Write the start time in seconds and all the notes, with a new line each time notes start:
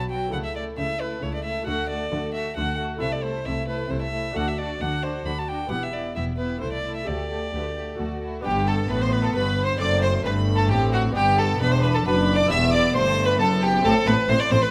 Already playing: B1 B2 D4 F#4 B4
0.10 F#3 F#4 B4 G5
0.28 A3 E4 A4
0.33 C#2 C#3 A3 E4 A4 F#5
0.44 E5
0.55 A3 E4 A4 D5
0.77 C#2 C#3 A3 E4 A4 E5
1.00 A3 E4 A4 B4
1.22 C#2 C#3 A3 E4 A4 C#5
1.34 D5
1.44 A3 E4 A4 E5
1.62 A3 F#4 A4
1.67 D2 D3 A3 F#4 A4 F#5
1.89 A3 F#4 A4 D5
2.11 D2 D3 A3 F#4 A4
2.34 A3 F#4 A4 E5
2.56 D2 D3 A3 F#4 A4 F#5
2.78 A3 F#4 A4
2.97 A3 E4 A4 E5
3.01 C2 C3 A4
3.13 D5
3.23 A3 E4 A4 C5
3.45 C2 C3 A3 E4 A4 E5
3.68 A3 E4 A4 B4
3.90 C2 C3 A3 E4 A4 C5
4.02 E5
4.13 A3 E4 A4
4.31 D4 F#4 A4
4.35 D2 A4 F#5
4.48 E5
4.58 D4 F#4 A4 D5
4.80 D2 D4 F#4 A4 F#5
5.03 D4 F#4 A4 C5
5.25 D2 D4 F#4 A4 B5
5.38 A5
5.48 D4 F#4 A4 G5
5.67 E1 E2 B3 E4 G4
5.71 E2 E4 G4 F#5
5.83 E5
5.93 B3 E4 G4 D5
6.15 E1 E2 B3 E4 G4 E5
6.38 B3 E4 G4 B4
6.58 C2 A3 E4 A4 C5
6.62 A4
6.73 D5
6.84 A3 E4 A4
6.96 E5
7.03 A3 G4 A4 D5
7.07 D2 A3 G4 A4
7.30 A3 G4 A4
7.53 D2 A3 G4 B4
7.65 A4
7.76 A3 G4
7.95 A3 F#4 A4
7.99 D2 A3 F#4 A4
8.22 A3 E4 F#4
8.41 B3 D4 G4 G5
8.45 G1 G2 B3 G4
8.67 A4 A5
8.89 A1 A2 B4 B5
9.01 C5 C6
9.12 B4 B5
9.23 A4 A5
9.34 G1 G2 B4 B5
9.64 C5 C6
9.76 F#1 C4 D4 A4 D5 D6
9.80 F#2 A3 D5
10.02 C5 C6
10.24 G1 G2 B4 B5
10.55 A4 A5
10.70 A1 A2 C4 G4 G5
10.92 F#4 F#5
11.11 B3 D4 G4
11.15 G1 G2 B3 G4 G5
11.38 A4 A5
11.60 E1 E2 D4 B4 B5
11.72 C5 C6
11.83 B4 B5
11.94 A4 A5
12.05 F#1 F#2 D4 B4 B5
12.35 D5 D6
12.46 B3 E4 G4 E5 E6
12.51 E1 E2 E5
12.72 D5 D6
12.94 G1 G2 A3 C5 C6
13.25 B4 B5
13.40 F#1 F#2 B3 A4 A5
13.62 G4 G5
13.80 C4 E4 A4 A5
13.84 A1 A2 C4 A4
14.07 A1 A2 C4 B4 B5
14.29 A1 A2 C4 C5 C6
14.40 D5 D6
14.50 A1 A2 C4 C5 C6
14.62 B4 B5